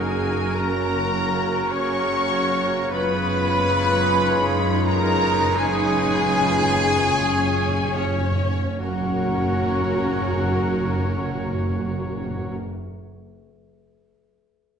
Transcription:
0.00 2.87 F#1 medium
0.00 2.87 F#2 medium
0.00 0.52 C#3 medium
0.00 0.52 A#3 medium
0.00 0.52 C#4 medium
0.00 0.56 D#4 medium
0.00 0.52 F#4 medium
0.00 2.87 F#4 medium
0.00 0.55 G#4 medium
0.00 0.56 G#4 medium
0.00 1.65 A#4 medium
0.00 2.87 A#4 medium
0.00 0.55 G#5 loud
0.00 0.55 G#5 medium
0.53 1.67 C#3 medium
0.53 1.67 A#3 medium
0.53 1.11 C#4 medium
0.53 1.67 C#4 medium
0.53 1.67 F#4 medium
0.53 1.69 A#4 loud
0.53 1.68 A#5 loud
0.53 1.69 A#5 loud
1.13 2.87 C#4 loud
1.68 2.89 C#3 medium
1.68 2.89 A#3 medium
1.68 2.87 C#4 medium
1.68 2.87 F#4 medium
1.68 2.28 G#4 medium
1.68 2.90 C#5 loud
1.68 2.91 C#5 loud
1.68 2.66 C#6 loud
1.68 2.91 C#6 loud
2.28 2.90 F#4 medium
2.89 8.44 F#1 loud
2.89 8.44 F#2 loud
2.89 2.98 F#2 soft
2.89 5.51 C#3 loud
2.89 5.54 G#3 loud
2.89 4.16 B3 medium
2.89 5.37 C#4 medium
2.89 5.37 F4 medium
2.89 8.25 F4 medium
2.89 4.16 B4 medium
2.89 4.85 B4 loud
2.89 4.69 B4 loud
2.89 8.24 C#5 medium
2.89 4.81 B5 loud
2.89 4.82 B5 loud
2.99 3.07 F#2 soft
3.08 3.16 F#2 soft
3.26 3.34 F#2 soft
3.54 3.62 F#2 soft
3.64 3.71 F#2 soft
3.72 3.81 F#2 soft
3.82 3.90 F#2 soft
3.91 3.98 F#2 medium
4.00 4.07 F#2 soft
4.08 4.16 F#2 medium
4.17 7.09 D#4 medium
4.17 7.05 B4 medium
4.27 4.35 F#2 medium
4.55 4.64 F#2 medium
4.65 4.74 F#2 medium
4.75 4.84 F#2 medium
4.84 4.93 F#2 medium
4.84 5.54 A#4 loud
4.84 5.55 A#5 loud
4.84 5.56 A#5 loud
5.04 5.13 F#2 medium
5.25 5.33 F#2 medium
5.34 5.43 F#2 medium
5.44 5.54 F#2 medium
5.54 5.64 F#2 medium
5.54 8.25 C#3 loud
5.54 8.25 G#3 loud
5.54 8.24 C#4 medium
5.54 8.24 F4 medium
5.54 7.95 G#4 loud
5.54 7.95 G#5 loud
5.54 7.92 G#5 loud
5.65 5.75 F#2 medium
5.76 5.85 F#2 medium
5.86 5.95 F#2 medium
5.96 6.05 F#2 medium
6.07 6.17 F#2 medium
6.18 6.28 F#2 medium
6.29 6.39 F#2 medium
6.40 6.50 F#2 medium
6.51 6.61 F#2 medium
6.63 6.72 F#2 loud
6.73 6.84 F#2 medium
6.85 6.95 F#2 loud
6.96 7.07 F#2 loud
7.08 7.19 F#2 medium
7.08 8.48 C#4 medium
7.08 8.45 C#5 medium
7.20 7.31 F#2 loud
7.32 7.43 F#2 loud
7.44 7.55 F#2 loud
7.56 7.67 F#2 medium
7.68 7.80 F#2 loud
7.81 7.92 F#2 loud
7.93 8.05 F#2 loud
7.93 8.78 C#4 medium
7.93 8.79 C#4 medium
7.93 8.79 C#5 medium
7.93 8.79 C#5 loud
8.06 8.17 F#2 loud
8.18 8.29 F#2 loud
8.31 8.41 F#2 loud
8.43 8.53 F#2 loud
8.55 8.65 F#2 loud
8.66 8.76 F#2 loud
8.77 12.55 F#1 medium
8.77 12.55 F#2 medium
8.77 8.86 F#2 medium
8.77 12.56 C#3 medium
8.77 12.56 F#3 medium
8.77 12.54 A#3 medium
8.77 12.55 C#4 medium
8.77 12.55 F#4 medium
8.77 12.57 A#4 loud
8.77 12.56 C#5 medium
8.77 12.57 A#5 medium
8.86 8.93 F#2 medium
8.93 8.99 F#2 medium
9.00 9.06 F#2 medium
9.06 9.12 F#2 medium
9.12 9.18 F#2 medium
9.18 9.24 F#2 medium
9.25 9.31 F#2 medium
9.31 9.37 F#2 medium
9.38 9.44 F#2 medium
9.44 9.50 F#2 medium
9.50 9.56 F#2 medium
9.56 9.62 F#2 medium
9.62 9.68 F#2 loud
9.68 9.74 F#2 loud
9.74 9.81 F#2 medium
9.81 9.87 F#2 medium
9.87 9.93 F#2 medium
9.93 9.99 F#2 loud
10.00 10.06 F#2 medium
10.06 10.12 F#2 medium
10.12 10.18 F#2 medium
10.19 10.26 F#2 loud
10.26 10.32 F#2 medium
10.32 10.37 F#2 loud
10.37 10.43 F#2 medium
10.43 10.50 F#2 medium
10.50 10.56 F#2 medium
10.56 10.61 F#2 loud
10.61 10.68 F#2 medium
10.68 10.74 F#2 loud
10.74 10.80 F#2 medium
10.80 10.87 F#2 medium
10.87 10.93 F#2 medium
10.93 10.99 F#2 medium
10.99 11.05 F#2 medium
11.06 11.12 F#2 loud
11.12 11.19 F#2 medium
11.19 11.25 F#2 medium
11.25 11.31 F#2 medium
11.32 11.38 F#2 medium
11.38 11.45 F#2 medium
11.45 11.52 F#2 medium
11.52 11.58 F#2 medium
11.58 11.65 F#2 medium
11.65 11.71 F#2 medium
11.72 11.78 F#2 loud
11.78 11.84 F#2 medium
11.84 11.91 F#2 loud
11.91 11.97 F#2 medium
11.98 12.04 F#2 medium
12.04 12.10 F#2 medium
12.11 12.17 F#2 loud
12.17 12.23 F#2 loud
12.23 12.29 F#2 loud
12.30 12.36 F#2 medium
12.36 12.42 F#2 medium
12.42 12.49 F#2 medium
12.49 12.55 F#2 loud

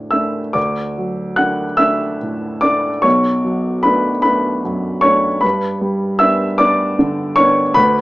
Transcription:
0.00 0.53 D2 soft
0.00 0.39 A2 soft
0.00 0.58 F#3 soft
0.00 0.13 A3 soft
0.00 0.13 D4 soft
0.11 0.52 A3 soft
0.11 0.53 D4 soft
0.11 0.53 E5 soft
0.11 0.55 E6 medium
0.53 3.00 D2 medium
0.53 1.34 D5 soft
0.53 1.38 D6 medium
0.98 1.64 F#3 soft
1.36 1.76 A3 soft
1.36 1.76 D4 soft
1.36 1.77 F#5 medium
1.36 1.79 F#6 medium
1.77 2.17 A3 soft
1.77 2.17 D4 soft
1.77 2.58 E5 medium
1.77 2.62 E6 medium
2.21 2.88 A2 soft
2.61 3.01 A3 soft
2.61 3.01 D4 soft
2.61 3.01 D5 medium
2.61 3.03 D6 medium
3.02 5.39 B1 medium
3.02 3.81 C#5 medium
3.02 3.84 C#6 medium
3.44 4.09 F#3 soft
3.83 4.21 A3 soft
3.83 4.21 D4 soft
3.83 4.21 B4 medium
3.83 4.21 B5 medium
4.22 4.61 A3 soft
4.22 4.61 D4 soft
4.22 5.00 B4 medium
4.22 5.03 B5 medium
4.65 5.28 F#2 soft
5.01 5.39 A3 soft
5.01 5.39 D4 soft
5.01 5.39 C#5 medium
5.01 5.42 C#6 medium
5.41 7.73 G2 medium
5.41 6.17 B4 medium
5.41 6.20 B5 medium
5.81 6.45 G3 soft
6.19 6.56 B3 soft
6.19 6.57 D4 soft
6.19 6.57 E5 medium
6.19 6.59 E6 medium
6.58 6.95 B3 soft
6.58 6.96 D4 medium
6.58 7.33 D5 medium
6.58 7.37 D6 medium
6.99 7.61 D3 soft
7.36 7.73 B3 soft
7.36 7.73 D4 medium
7.36 7.73 C#5 medium
7.36 7.76 C#6 medium
7.74 8.01 D2 medium
7.74 8.01 B4 medium
7.74 8.01 B5 medium

